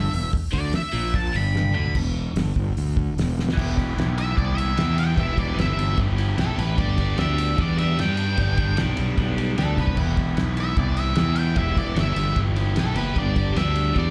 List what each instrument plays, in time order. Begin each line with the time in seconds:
Already playing: fingered electric bass G1, overdriven electric guitar G2, lead electric guitar E5
0.12 fingered electric bass E1, overdriven electric guitar E2, open hi-hat
0.33 kick, open hi-hat
0.53 fingered electric bass D2, overdriven electric guitar D3, lead electric guitar D5, kick, open hi-hat
0.73 lead electric guitar E5, muted overdriven electric guitar stroke, muted fingered electric bass stroke, snare, open hi-hat
0.93 fingered electric bass A#1, overdriven electric guitar A#2, open hi-hat
1.14 lead electric guitar A5, kick, open hi-hat
1.33 fingered electric bass G1, overdriven electric guitar G2, lead electric guitar B5, open hi-hat
1.56 snare
1.64 high tom
1.74 fingered electric bass D2, overdriven electric guitar D3, lead electric guitar B5, mid tom
1.86 floor tom
1.95 fingered electric bass E1, kick, crash
2.36 fingered electric bass G1, snare, open hi-hat
2.56 fingered electric bass G1, kick
2.77 fingered electric bass D2, open hi-hat
2.97 kick
3.16 fingered electric bass E1, snare, open hi-hat
3.39 snare
3.49 snare
3.53 overdriven electric guitar E3 B3 E4
3.58 fingered electric bass E1, overdriven electric guitar G4, kick, crash
3.74 overdriven electric guitar B3 E4 G4, kick
3.79 ride
3.95 fingered electric bass B1, overdriven electric guitar E3 B3 E4, ride
4.00 overdriven electric guitar G4, snare
4.18 lead electric guitar E5, ride
4.35 fingered electric bass C2, overdriven electric guitar E3 B3 E4, lead electric guitar D5, kick, ride
4.40 overdriven electric guitar G4
4.54 overdriven electric guitar E4 G4, lead electric guitar E5
4.58 overdriven electric guitar B3, ride
4.75 fingered electric bass E2, overdriven electric guitar E3 B3 E4, snare, ride
4.80 overdriven electric guitar G4
4.96 overdriven electric guitar B3 E4 G4, lead electric guitar G5, ride
5.15 fingered electric bass E1, overdriven electric guitar E3 B3 E4, kick, ride
5.19 overdriven electric guitar G4, lead electric guitar E5
5.34 overdriven electric guitar E4 G4, kick, ride
5.38 overdriven electric guitar B3, lead electric guitar D5
5.54 fingered electric bass G1, overdriven electric guitar E3 B3 E4
5.58 overdriven electric guitar G4, lead electric guitar E5, snare, ride
5.77 fingered electric bass G1, ride
5.94 overdriven electric guitar E3 B3 E4, kick, ride
5.98 fingered electric bass G1, overdriven electric guitar G4
6.15 overdriven electric guitar E4 G4, ride
6.20 overdriven electric guitar B3
6.36 fingered electric bass B1, overdriven electric guitar E3 B3 E4, snare, ride
6.40 overdriven electric guitar G4, lead electric guitar A4
6.54 overdriven electric guitar E4 G4
6.58 fingered electric bass A1, overdriven electric guitar B3, lead electric guitar B4, ride
6.75 fingered electric bass G1, overdriven electric guitar G3 B3 D4, lead electric guitar D5, kick, ride
6.79 overdriven electric guitar G4
6.96 overdriven electric guitar B3 D4 G4, kick, ride
7.16 fingered electric bass D2, overdriven electric guitar G3 B3 D4, lead electric guitar E5, snare, ride
7.21 overdriven electric guitar G4
7.38 ride
7.57 fingered electric bass E2, overdriven electric guitar G3 B3 D4, kick, ride
7.61 overdriven electric guitar G4, lead electric guitar D5
7.77 overdriven electric guitar D4 G4, lead electric guitar E5, ride
7.81 overdriven electric guitar B3
7.96 fingered electric bass G2, overdriven electric guitar G3 B3 D4, lead electric guitar G5, snare, ride
8.01 overdriven electric guitar G4
8.17 overdriven electric guitar D4 G4, ride
8.21 overdriven electric guitar B3
8.35 fingered electric bass G1, overdriven electric guitar G3 B3 D4, kick, ride
8.39 overdriven electric guitar G4
8.55 overdriven electric guitar D4 G4, kick, ride
8.60 overdriven electric guitar B3
8.75 fingered electric bass B1, overdriven electric guitar G3 B3 D4, snare, ride
8.79 overdriven electric guitar G4
8.97 fingered electric bass B1, ride
9.16 fingered electric bass B1, overdriven electric guitar G3 B3 D4, kick, ride
9.20 overdriven electric guitar G4
9.36 overdriven electric guitar D4 G4, ride
9.40 overdriven electric guitar B3
9.56 fingered electric bass D2, overdriven electric guitar G3 B3 D4, lead electric guitar A4, snare, ride
9.60 overdriven electric guitar G4
9.74 fingered electric bass C2, overdriven electric guitar D4 G4, kick, ride
9.79 overdriven electric guitar B3, lead electric guitar B4
9.88 kick
9.94 fingered electric bass E1, overdriven electric guitar E3 B3 E4, kick, crash
9.99 overdriven electric guitar G4
10.14 overdriven electric guitar E4 G4, kick, ride
10.19 overdriven electric guitar B3
10.35 fingered electric bass B1, overdriven electric guitar E3 B3 E4, snare, ride
10.40 overdriven electric guitar G4
10.57 lead electric guitar E5, ride
10.75 fingered electric bass C2, overdriven electric guitar E3 B3 E4, lead electric guitar D5, kick, ride
10.80 overdriven electric guitar G4
10.94 overdriven electric guitar E4 G4, ride
10.99 overdriven electric guitar B3, lead electric guitar E5
11.13 fingered electric bass E2, overdriven electric guitar E3 B3 E4, snare, ride
11.18 overdriven electric guitar G4
11.34 overdriven electric guitar E4 G4, ride
11.39 overdriven electric guitar B3, lead electric guitar G5
11.54 fingered electric bass E1, overdriven electric guitar E3 B3 E4 G4, kick, ride
11.58 lead electric guitar E5
11.74 overdriven electric guitar B3 E4 G4, lead electric guitar D5, kick, ride
11.94 fingered electric bass G1, overdriven electric guitar E3 B3 E4, snare, ride
11.98 overdriven electric guitar G4, lead electric guitar E5
12.16 fingered electric bass G1, ride
12.33 overdriven electric guitar E3 B3 E4, kick, ride
12.37 fingered electric bass G1, overdriven electric guitar G4
12.55 overdriven electric guitar E4 G4, ride
12.59 overdriven electric guitar B3
12.75 fingered electric bass B1, overdriven electric guitar E3 B3 E4, snare, ride
12.79 overdriven electric guitar G4, lead electric guitar A4
12.94 fingered electric bass F#1, overdriven electric guitar E4 G4, lead electric guitar B4, ride
12.99 overdriven electric guitar B3
13.13 fingered electric bass G1, overdriven electric guitar G3 B3 D4, kick, ride
13.18 overdriven electric guitar G4, lead electric guitar D5
13.33 overdriven electric guitar D4 G4, kick, ride
13.38 overdriven electric guitar B3
13.53 fingered electric bass D2, overdriven electric guitar G3 B3 D4, lead electric guitar E5, ride
13.58 overdriven electric guitar G4, snare
13.76 ride
13.93 fingered electric bass E2, overdriven electric guitar G3 B3 D4, kick, ride
13.98 overdriven electric guitar G4, lead electric guitar D5